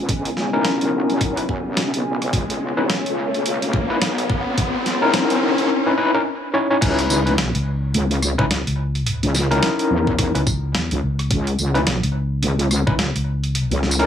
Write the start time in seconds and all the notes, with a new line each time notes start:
Already playing: C#2 B3 C#4 D#5 G#5, riser
0.09 kick, closed hi-hat
0.25 closed hi-hat
0.37 snare
0.53 C#4 D#4 E4 A#4
0.65 snare, closed hi-hat
0.81 F#2, closed hi-hat
0.93 B1
1.09 F#2, closed hi-hat
1.21 kick, cross-stick, closed hi-hat
1.37 C#4 D#4 E4 B4, closed hi-hat
1.49 kick
1.77 snare, closed hi-hat
1.93 B1, closed hi-hat
2.22 cross-stick, closed hi-hat
2.33 C#2 C#5, kick, closed hi-hat
2.50 closed hi-hat
2.77 G#1 C#4 D#4 E4 B4
2.90 snare, closed hi-hat
3.05 C#2, closed hi-hat
3.34 closed hi-hat
3.45 C#2, closed hi-hat
3.62 closed hi-hat
3.73 kick
3.90 C#4 D#4 E4 B4
4.02 B1, snare, closed hi-hat
4.18 closed hi-hat
4.30 kick
4.46 C#2
4.58 kick, closed hi-hat
4.86 snare, closed hi-hat
5.02 C#4 D#4 E4 A#4
5.14 snare, closed hi-hat
5.30 F#2, closed hi-hat
5.42 B1
5.58 C#2, closed hi-hat
5.86 C#4 D#4 E4 B4
5.98 C#4 D#4 E4 B4
6.14 C#4 D#4 E4 A#4
6.54 C#4 D#4 E4 C#5
6.70 C#4 D#4 E4 C#5
6.81 C#2 C#4 D#4 E4 B4, kick, closed hi-hat, crash
6.99 closed hi-hat
7.09 C#2, tambourine
7.26 C#4 D#4 E4 B4, closed hi-hat
7.38 B1, snare, closed hi-hat
7.55 C#2, closed hi-hat
7.94 C#2, closed hi-hat
8.11 closed hi-hat
8.22 cross-stick, tambourine
8.38 C#2 C#4 D#4 E4 B4, kick
8.50 C#2, snare, closed hi-hat
8.67 C#2, closed hi-hat
8.95 closed hi-hat
9.06 closed hi-hat
9.23 C#2, closed hi-hat
9.35 snare, tambourine
9.51 C#4 D#4 E4 A#4, closed hi-hat
9.63 snare, closed hi-hat
9.79 closed hi-hat
9.90 E2
10.07 kick
10.19 kick, cross-stick, closed hi-hat
10.35 C#2 C#4 D#4 E4 B4, closed hi-hat
10.47 kick, tambourine
10.74 E2, snare, closed hi-hat
10.91 C#2, closed hi-hat
11.03 C#2
11.19 cross-stick, closed hi-hat
11.30 C#2, kick, closed hi-hat
11.47 closed hi-hat
11.58 C#2, tambourine
11.74 C#4 D#4 E4 B4, closed hi-hat
11.86 B1, snare, closed hi-hat
12.03 C#2, closed hi-hat
12.42 C#2, closed hi-hat
12.59 closed hi-hat
12.71 cross-stick, tambourine
12.87 C#2 C#4 D#4 E4 B4, kick
12.98 C#2, snare, closed hi-hat
13.15 C#2, closed hi-hat
13.44 closed hi-hat
13.55 closed hi-hat
13.71 C#2, closed hi-hat
13.83 snare
13.91 tambourine
13.99 C#4 D#4 E4 A#4, closed hi-hat